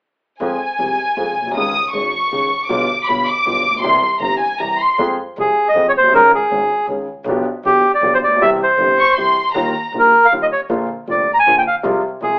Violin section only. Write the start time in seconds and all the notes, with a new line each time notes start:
0.42 G#5
1.57 D#6
1.94 C#6
2.70 D6
3.07 B5
3.27 D6
3.83 C6
4.21 A#5
4.40 G#5
4.60 A#5
4.81 C6
8.99 C#6
9.16 C6
9.57 A#5